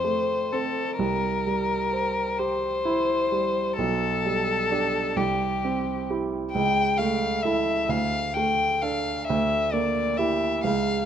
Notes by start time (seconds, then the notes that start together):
Already playing: F2 C5
0.04 A3
0.53 C4 A4 C5
0.99 C2 A#4
1.47 G3
1.93 C5
2.39 G4 C5
2.85 E4
3.32 G3
3.77 B1 A4
4.25 G3
4.71 D4 G4
5.16 C2 G4
5.65 C4
6.10 E4 G4
6.53 C#2 G5
6.98 A3 F5
7.43 E4 A4 E5
7.89 D2 F5
8.34 A3 G5
8.81 D4 A4 F5
9.27 D2 E5
9.72 A#3 D5
10.17 E4 G4 E5
10.64 C#2 F5